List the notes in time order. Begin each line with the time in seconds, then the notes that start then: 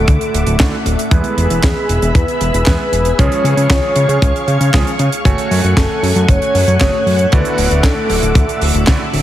Already playing: D3 A3 E4 F#4 A4 D5 E5 F#5 D6
0.08 D2, kick, closed hi-hat
0.21 closed hi-hat
0.34 D1, closed hi-hat
0.47 D1, closed hi-hat
0.60 D2 D3 A3 E4 F#4 D5, kick, snare, clap, closed hi-hat
0.86 D1, closed hi-hat
0.99 closed hi-hat
1.11 E2 G#3 B3 E4 G#4 B4 E5 B5, kick, closed hi-hat
1.24 closed hi-hat
1.37 E1, closed hi-hat
1.50 E1, closed hi-hat
1.63 E2 G#4, kick, snare, clap, closed hi-hat
1.89 E1, closed hi-hat
2.02 E1, closed hi-hat
2.15 E2 B4, kick, closed hi-hat
2.28 closed hi-hat
2.41 E1, closed hi-hat
2.54 E1, closed hi-hat
2.66 E2 G#3 B3 E4 B4, kick, snare, clap, closed hi-hat
2.92 E1, closed hi-hat
3.05 closed hi-hat
3.18 C#2 F3 G#3 C#4 G#4 C#5 F5 C#6, kick, closed hi-hat
3.32 closed hi-hat
3.44 C#3, closed hi-hat
3.57 C#3, closed hi-hat
3.70 C#2 C#5, kick, snare, clap, closed hi-hat
3.96 C#3, closed hi-hat
4.09 C#3, closed hi-hat
4.22 C#2, kick, closed hi-hat
4.36 closed hi-hat
4.48 C#3, closed hi-hat
4.60 C#3, closed hi-hat
4.74 C#2 F3 G#3 C#4 G#4, kick, snare, clap, closed hi-hat
4.87 closed hi-hat
4.99 C#3, closed hi-hat
5.12 closed hi-hat
5.25 F#1 A3 F#4 C#5 F#5 G#5, kick, closed hi-hat
5.38 closed hi-hat
5.51 F#2, open hi-hat
5.64 F#2, closed hi-hat
5.77 F#1 A4, kick, snare, clap, closed hi-hat
6.03 F#2, open hi-hat
6.16 F#2, closed hi-hat
6.28 F#1 C#5, kick, closed hi-hat
6.42 closed hi-hat
6.55 F#2, open hi-hat
6.67 F#2, closed hi-hat
6.80 F#1 A3 F#4 G#4 C#5, kick, snare, clap, closed hi-hat
7.06 F#2, open hi-hat
7.19 closed hi-hat
7.32 D2 D3 A3 E4 F#4 B4 D5 E5 D6, kick, closed hi-hat
7.45 closed hi-hat
7.58 D1, open hi-hat
7.71 D1, closed hi-hat
7.83 D2 A4, kick, snare, clap, closed hi-hat
8.10 D1, open hi-hat
8.23 D1, closed hi-hat
8.35 D2, kick, closed hi-hat
8.49 closed hi-hat
8.61 D1, open hi-hat
8.74 D1, closed hi-hat
8.87 D2 D3 A3 E4 F#4 D5, kick, snare, clap, closed hi-hat
9.13 D1, open hi-hat